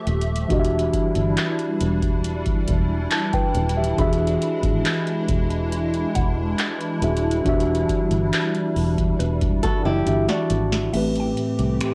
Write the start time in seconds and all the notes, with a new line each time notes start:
Already playing: F3 A3 F4 G4 A4 E5 C6
0.07 D#1, closed hi-hat
0.21 closed hi-hat
0.36 closed hi-hat
0.48 E1 E3 G3 D4 E4 F#4 G4, kick, closed hi-hat
0.53 D#5
0.60 E5
0.65 closed hi-hat
0.79 closed hi-hat
0.93 kick, closed hi-hat
1.15 G1, closed hi-hat
1.37 clap, closed hi-hat
1.59 closed hi-hat
1.81 E1, closed hi-hat
2.02 kick, closed hi-hat
2.24 closed hi-hat
2.46 kick, closed hi-hat
2.68 E1, kick, closed hi-hat
3.11 A5, clap, closed hi-hat
3.33 B4 G5, kick, closed hi-hat
3.54 D#1, closed hi-hat
3.69 closed hi-hat
3.77 G4 E5
3.84 closed hi-hat
3.96 E1 E3 G#3 D4 F#4 G#4 B5, kick, closed hi-hat
4.01 E5
4.13 closed hi-hat
4.27 closed hi-hat
4.42 closed hi-hat
4.63 G#1, kick, closed hi-hat
4.85 clap, closed hi-hat
5.07 closed hi-hat
5.28 E1, kick, closed hi-hat
5.50 closed hi-hat
5.72 closed hi-hat
5.94 closed hi-hat
6.15 E1 F#5, kick, closed hi-hat
6.59 clap, closed hi-hat
6.81 closed hi-hat
7.02 D#1 E3 D4 F#4 G#4 E5, closed hi-hat
7.17 closed hi-hat
7.31 closed hi-hat
7.44 E1 E3 G3 D4 F#4 G4, kick, closed hi-hat
7.49 E5
7.60 closed hi-hat
7.75 closed hi-hat
7.89 kick, closed hi-hat
8.11 G1, closed hi-hat
8.33 clap, closed hi-hat
8.55 closed hi-hat
8.76 E1, open hi-hat
8.98 kick, closed hi-hat
9.19 E1 B4, closed hi-hat
9.41 kick, closed hi-hat
9.63 F#4 A4, muted fingered electric bass stroke, kick, closed hi-hat
9.85 F#1 E4 G4
10.06 G1 E3 D4 F#4 G4 E5, closed hi-hat
10.28 D4 F#4, snare, closed hi-hat
10.50 G#1, closed hi-hat
10.72 snare
10.92 A1 A2 E3 A3 C4 G4 E5, closed hi-hat, crash
10.97 B4
11.16 closed hi-hat
11.20 G5
11.37 closed hi-hat
11.59 C2, closed hi-hat
11.81 finger snap, closed hi-hat